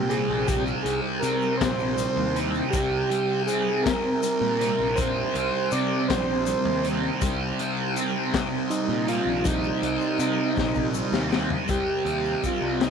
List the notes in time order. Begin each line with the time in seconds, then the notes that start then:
Already playing: C2 A#2 C3 G3 D#4 G4 C5 G5 C6
0.09 C4 G#4, closed hi-hat
0.28 A#1
0.47 C3 G4, kick, closed hi-hat, shaker
0.67 shaker
0.83 C2 G3 G#4, closed hi-hat
1.20 C3 C4 A#4, closed hi-hat, shaker
1.42 shaker
1.57 A#1 C3 C5, kick, closed hi-hat
1.62 snare
1.80 shaker
1.97 G3, closed hi-hat, shaker
2.16 D#2
2.36 C4, closed hi-hat
2.54 shaker
2.70 C2 C3 G4, kick, closed hi-hat, shaker
3.10 G3, closed hi-hat, shaker
3.46 C4 G#4, closed hi-hat, shaker
3.83 C3 A#4, kick, snare, closed hi-hat
4.23 G3, closed hi-hat, shaker
4.41 A#2
4.60 C4, closed hi-hat
4.79 A#1
4.95 C3 C5, kick, closed hi-hat, shaker
5.35 C2 G3, closed hi-hat, shaker
5.71 C3 C4 D5, closed hi-hat, shaker
6.08 A#1 C3 C5, kick, snare, closed hi-hat
6.46 G3, closed hi-hat, shaker
6.65 D#2
6.84 C4, closed hi-hat
7.21 C2 C3, kick, closed hi-hat, shaker
7.59 G3, closed hi-hat, shaker
7.96 C4, closed hi-hat, shaker
8.34 C3, kick, snare, closed hi-hat
8.70 G3 D#4, closed hi-hat, shaker
8.88 A#2
9.08 C4 F4, closed hi-hat
9.25 A#1
9.44 C3 D#4, kick, closed hi-hat, shaker
9.64 shaker
9.82 C2 G3, closed hi-hat
10.01 shaker
10.19 C3 C4, closed hi-hat, shaker
10.57 A#1 C3, kick, snare, shaker
10.75 kick, shaker
10.94 G3, shaker
11.12 D#2, snare, shaker
11.32 C4, snare, shaker
11.50 floor tom
11.68 C2 C3 G3 C4 G4 C5 D#5 G5 C6, kick, closed hi-hat, shaker
12.05 D#2 G3 C4, closed hi-hat
12.25 shaker
12.42 C3 G3 C4 F4, kick, closed hi-hat, shaker
12.61 C2
12.79 G3 C4 D#4, snare, closed hi-hat